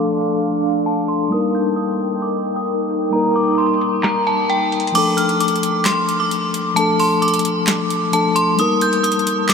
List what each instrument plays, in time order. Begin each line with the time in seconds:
Already playing: tine electric piano F3 A3 D4 A4, ambient pad D4 A4 F5, synth bell D6
0.01 closed hi-hat
0.06 closed hi-hat
0.12 closed hi-hat
0.18 closed hi-hat
0.40 closed hi-hat
0.63 closed hi-hat
0.86 synth bell A5, closed hi-hat
1.08 synth bell C6, closed hi-hat
1.29 tine electric piano G3 A#3 D#4, ambient pad D#4 A#4 G5, synth bell D#6, closed hi-hat
1.34 tine electric piano A#4
1.54 synth bell G6, closed hi-hat
1.65 closed hi-hat
1.76 synth bell D#6, closed hi-hat
1.84 closed hi-hat
1.92 closed hi-hat
2.00 closed hi-hat
2.22 synth bell D6, closed hi-hat
2.45 closed hi-hat
2.56 synth bell D#6
2.68 closed hi-hat
2.90 closed hi-hat
3.11 tine electric piano G3 A#3 D#4, synth bell A#5, closed hi-hat
3.16 tine electric piano A#4
3.36 synth bell D6, closed hi-hat
3.43 closed hi-hat
3.51 closed hi-hat
3.58 synth bell C6, closed hi-hat
3.66 closed hi-hat
3.74 closed hi-hat
3.81 closed hi-hat
4.03 synth bell A#5, snare, clap, closed hi-hat
4.27 synth bell A5, closed hi-hat
4.50 synth bell G5, closed hi-hat
4.72 closed hi-hat
4.80 closed hi-hat
4.87 closed hi-hat
4.92 tine electric piano F3 A3 D4, synth bell D6, closed hi-hat, crash
4.98 tine electric piano A4
5.17 synth bell F6, closed hi-hat
5.29 closed hi-hat
5.40 synth bell D6, closed hi-hat
5.48 closed hi-hat
5.56 closed hi-hat
5.63 closed hi-hat
5.85 synth bell C6, snare, clap, closed hi-hat
6.09 closed hi-hat
6.20 synth bell D6
6.31 closed hi-hat
6.54 closed hi-hat
6.74 tine electric piano F3 A3 D4, synth bell A5, closed hi-hat
6.79 tine electric piano A4
7.00 synth bell C6, open hi-hat
7.22 synth bell D6, closed hi-hat
7.28 closed hi-hat
7.34 closed hi-hat
7.39 closed hi-hat
7.45 closed hi-hat
7.67 snare, clap, closed hi-hat
7.90 closed hi-hat
8.12 tine electric piano F3 A3 D4 A4, synth bell A5, closed hi-hat
8.36 synth bell C6, closed hi-hat
8.56 tine electric piano G3 A#3 D#4, synth bell D#6, closed hi-hat
8.61 tine electric piano A#4
8.81 synth bell G6, closed hi-hat
8.93 closed hi-hat
9.04 synth bell D#6, closed hi-hat
9.12 closed hi-hat
9.19 closed hi-hat
9.27 closed hi-hat
9.49 synth bell D6, snare, clap, closed hi-hat